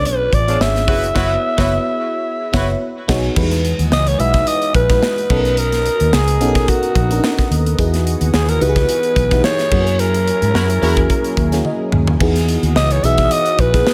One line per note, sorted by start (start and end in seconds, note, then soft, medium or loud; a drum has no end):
0.00 0.47 B3 medium
0.00 0.89 C#4 loud
0.00 0.48 D4 medium
0.00 0.48 F4 medium
0.00 0.48 G#4 medium
0.00 0.27 C#5 medium
0.05 0.28 B1 medium
0.05 0.36 B4 medium
0.05 closed hi-hat medium
0.33 0.56 A1 medium
0.33 0.63 D5 medium
0.33 kick medium
0.33 closed hi-hat medium
0.47 0.86 B3 medium
0.47 0.88 D4 medium
0.47 0.58 D4 medium
0.47 0.58 F4 medium
0.47 0.88 F4 medium
0.47 0.59 G#4 medium
0.47 0.87 G#4 medium
0.47 0.87 C#5 medium
0.47 closed hi-hat medium
0.60 0.88 G#1 medium
0.60 2.82 E5 loud
0.60 snare loud
0.76 snare soft
0.76 closed hi-hat soft
0.87 1.11 F#1 medium
0.87 1.14 B3 medium
0.87 1.05 E4 medium
0.87 1.14 E4 medium
0.87 1.05 F#4 medium
0.87 1.14 F#4 medium
0.87 1.16 G#4 medium
0.87 1.05 B4 loud
0.87 1.14 C#5 medium
0.87 kick loud
0.87 open hi-hat medium
1.04 closed hi-hat soft
1.15 1.35 F#1 medium
1.15 1.34 B3 loud
1.15 1.29 E4 loud
1.15 1.34 E4 medium
1.15 1.29 F#4 loud
1.15 1.35 F#4 medium
1.15 1.29 B4 loud
1.15 1.35 C#5 medium
1.15 kick loud
1.15 snare loud
1.15 crash medium
1.57 1.76 F#1 loud
1.57 1.76 B3 loud
1.57 1.71 E4 loud
1.57 1.76 E4 loud
1.57 1.72 F#4 loud
1.57 1.77 F#4 loud
1.57 1.71 B4 loud
1.57 1.77 C#5 loud
1.57 kick loud
1.57 snare loud
2.53 2.73 F#1 medium
2.53 2.72 B3 loud
2.53 2.72 E4 medium
2.53 2.68 E4 medium
2.53 2.73 F#4 loud
2.53 2.68 F#4 loud
2.53 2.68 B4 loud
2.53 2.73 C#5 medium
2.53 kick loud
2.53 snare loud
3.08 3.28 B1 medium
3.08 3.27 B3 loud
3.08 3.28 D#4 medium
3.08 3.28 F#4 loud
3.08 3.28 G#4 medium
3.08 3.28 C#5 loud
3.08 kick loud
3.08 snare loud
3.08 crash medium
3.36 3.72 E2 loud
3.36 5.28 E3 medium
3.36 3.43 G3 medium
3.36 9.68 B3 medium
3.36 3.95 D#4 medium
3.36 3.95 E4 medium
3.36 5.28 F#4 medium
3.36 3.96 F#4 medium
3.36 5.28 G#4 loud
3.36 3.96 B4 medium
3.36 9.67 D#5 medium
3.36 kick loud
3.36 crash loud
3.42 3.98 G#3 medium
3.51 snare soft
3.51 closed hi-hat medium
3.65 closed hi-hat medium
3.79 3.89 D#2 medium
3.79 closed hi-hat medium
3.92 4.15 C#2 medium
3.92 4.09 D#5 loud
3.92 snare loud
4.07 4.21 C#5 loud
4.07 closed hi-hat medium
4.19 4.42 B1 medium
4.19 4.68 G#3 medium
4.19 4.68 D#4 medium
4.19 4.69 E4 medium
4.19 4.69 F#4 medium
4.19 4.69 B4 medium
4.19 4.49 E5 loud
4.19 closed hi-hat medium
4.34 kick medium
4.34 snare soft
4.34 closed hi-hat medium
4.47 4.75 D#5 loud
4.47 closed hi-hat loud
4.62 closed hi-hat soft
4.74 4.97 A#1 medium
4.74 5.60 B4 loud
4.74 kick loud
4.74 closed hi-hat medium
4.89 5.30 G#3 medium
4.89 5.29 D#4 medium
4.89 5.30 E4 medium
4.89 5.29 F#4 medium
4.89 5.30 B4 medium
4.89 kick loud
4.89 snare soft
4.89 closed hi-hat medium
5.03 snare loud
5.18 closed hi-hat soft
5.30 5.88 B1 medium
5.30 6.19 B3 medium
5.30 6.19 C#4 medium
5.30 6.19 D#4 medium
5.30 6.19 F#4 medium
5.30 5.37 A4 medium
5.30 7.76 A#4 medium
5.30 kick loud
5.30 crash medium
5.38 6.22 A#4 medium
5.45 closed hi-hat medium
5.57 6.15 A#4 loud
5.57 closed hi-hat medium
5.72 snare soft
5.72 closed hi-hat medium
5.86 closed hi-hat medium
6.00 6.11 D#2 medium
6.00 closed hi-hat medium
6.13 6.40 C#2 medium
6.13 6.70 G#4 medium
6.13 snare loud
6.28 closed hi-hat medium
6.40 6.63 B1 medium
6.40 6.90 B3 medium
6.40 6.90 C#4 medium
6.40 6.90 D#4 medium
6.40 6.90 F#4 medium
6.40 6.48 A4 medium
6.40 closed hi-hat medium
6.48 6.93 A#4 medium
6.55 kick loud
6.55 snare soft
6.55 closed hi-hat medium
6.68 7.51 F#4 medium
6.68 kick medium
6.68 closed hi-hat loud
6.83 closed hi-hat soft
6.95 7.18 A#1 medium
6.95 kick loud
6.95 closed hi-hat medium
7.11 7.59 B3 medium
7.11 7.59 C#4 medium
7.11 7.17 D4 medium
7.11 7.59 F#4 medium
7.11 7.59 A#4 medium
7.11 closed hi-hat medium
7.18 7.62 D#4 medium
7.24 snare loud
7.39 kick medium
7.39 snare soft
7.39 closed hi-hat soft
7.51 7.74 D#2 medium
7.51 closed hi-hat medium
7.66 closed hi-hat medium
7.78 8.14 E2 medium
7.78 9.70 E3 medium
7.78 8.37 B3 medium
7.78 8.37 D#4 medium
7.78 8.38 E4 medium
7.78 9.69 F#4 medium
7.78 8.38 F#4 medium
7.78 13.94 G#4 loud
7.78 8.38 G#4 medium
7.78 kick loud
7.78 closed hi-hat medium
7.94 snare soft
7.94 closed hi-hat medium
8.07 closed hi-hat medium
8.21 8.31 D#2 medium
8.21 closed hi-hat medium
8.34 8.57 D#2 loud
8.34 8.51 G#4 medium
8.34 snare loud
8.49 8.63 A#4 medium
8.49 closed hi-hat medium
8.61 8.84 C#2 medium
8.61 9.10 B3 medium
8.61 9.10 D#4 medium
8.61 9.11 E4 medium
8.61 9.11 F#4 medium
8.61 8.69 G4 medium
8.61 9.44 B4 loud
8.61 closed hi-hat medium
8.69 9.14 G#4 medium
8.76 kick loud
8.76 snare soft
8.76 closed hi-hat medium
8.89 closed hi-hat loud
9.03 closed hi-hat soft
9.16 9.39 B1 medium
9.16 kick loud
9.16 closed hi-hat medium
9.31 9.72 B3 medium
9.31 9.72 D#4 medium
9.31 9.71 E4 medium
9.31 9.71 F#4 medium
9.31 9.38 G4 medium
9.31 kick loud
9.31 snare soft
9.31 closed hi-hat medium
9.39 9.71 G#4 medium
9.44 10.01 C#5 loud
9.44 snare loud
9.59 snare soft
9.59 closed hi-hat soft
9.71 10.30 F#2 loud
9.71 12.18 F#3 medium
9.71 10.61 A#3 medium
9.71 10.61 C#4 medium
9.71 12.18 C#4 medium
9.71 12.18 E4 medium
9.71 10.61 E4 medium
9.71 10.61 F#4 medium
9.71 10.61 G#4 medium
9.71 12.18 A#4 medium
9.71 kick loud
9.71 crash medium
9.87 closed hi-hat medium
9.99 11.65 A#4 loud
9.99 closed hi-hat medium
10.14 closed hi-hat medium
10.28 closed hi-hat medium
10.42 10.53 G#2 medium
10.42 closed hi-hat medium
10.54 10.77 F#2 medium
10.54 10.64 E4 loud
10.54 10.64 F#4 loud
10.54 10.64 A#4 loud
10.54 snare loud
10.70 closed hi-hat medium
10.82 11.05 E2 medium
10.82 11.31 A#3 loud
10.82 11.32 C#4 loud
10.82 11.00 E4 loud
10.82 11.32 E4 medium
10.82 11.00 F#4 loud
10.82 11.32 F#4 loud
10.82 11.32 G#4 loud
10.82 11.00 A#4 loud
10.82 open hi-hat medium
10.97 kick loud
10.97 closed hi-hat medium
11.10 kick medium
11.10 closed hi-hat medium
11.24 closed hi-hat medium
11.37 11.60 D#2 medium
11.37 kick loud
11.37 closed hi-hat medium
11.52 12.01 A#3 medium
11.52 12.01 C#4 medium
11.52 12.01 E4 medium
11.52 12.01 F#4 medium
11.52 12.01 G#4 medium
11.52 snare soft
11.52 closed hi-hat medium
11.65 12.17 D#5 medium
11.65 high tom medium
11.92 12.16 D#2 medium
11.92 mid tom medium
12.07 floor tom loud
12.20 12.56 E2 loud
12.20 13.94 E3 medium
12.20 12.79 B3 medium
12.20 13.94 B3 medium
12.20 12.80 D#4 medium
12.20 12.80 E4 medium
12.20 13.94 F#4 medium
12.20 12.80 F#4 medium
12.20 12.80 G#4 medium
12.20 13.94 D#5 medium
12.20 kick loud
12.20 crash medium
12.36 snare soft
12.36 closed hi-hat medium
12.48 closed hi-hat medium
12.63 12.73 D#2 medium
12.63 closed hi-hat medium
12.76 12.99 C#2 medium
12.76 12.93 D#5 loud
12.76 snare loud
12.91 13.06 C#5 loud
12.91 closed hi-hat medium
13.03 13.26 B1 medium
13.03 13.53 B3 medium
13.03 13.53 D#4 medium
13.03 13.53 E4 medium
13.03 13.53 F#4 medium
13.03 13.53 G#4 loud
13.03 13.34 E5 loud
13.03 closed hi-hat medium
13.18 kick loud
13.18 snare soft
13.18 closed hi-hat medium
13.31 13.61 D#5 loud
13.31 closed hi-hat loud
13.46 closed hi-hat soft
13.58 13.81 A#1 medium
13.58 13.94 B4 loud
13.58 kick loud
13.58 closed hi-hat medium
13.74 13.94 B3 medium
13.74 13.94 D#4 medium
13.74 13.94 E4 medium
13.74 13.94 F#4 medium
13.74 13.94 G#4 medium
13.74 kick loud
13.74 snare soft
13.74 closed hi-hat medium
13.87 snare loud